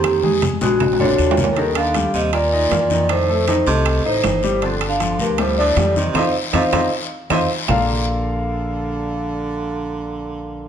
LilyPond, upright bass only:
\new Staff \with { instrumentName = "Upright bass" } { \clef bass \time 4/4 \key bes \major \tempo 4 = 157 f,4. bes,,4. ees,4~ | ees,4. ees,4. f,4~ | f,4. c,4 a,,8 g,,4~ | g,,4. d,4. f,4 |
f,8 r8 f,8 f,8 r4 f,8 r8 | bes,,1~ | bes,,1 | }